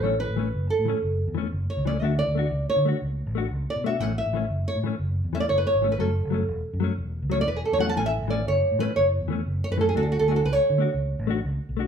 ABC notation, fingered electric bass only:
X:1
M:12/8
L:1/16
Q:3/8=121
K:A
V:1 name="Fingered electric bass" clef=bass
A,,,3 A,,,3 F,,,2 z A,,2 z F,,,3 E,,3 F,,,2 z C,,3 | D,,3 D,,3 C,,2 z D,2 z C,,3 A,,,3 C,,2 z B,,3 | A,,,3 A,,,3 F,,,2 z A,,2 z F,,,3 E,,3 F,,,2 z G,,,3 | F,,,3 F,,,3 E,,,2 z F,,2 z E,,,3 C,,3 E,,,2 z E,,3 |
A,,,3 A,,,3 F,,,2 z A,,2 z F,,,3 E,,3 F,,,2 z F,,3 | D,,3 D,,3 C,,2 z D,2 z C,,3 A,,,3 C,,2 z B,,,3 |]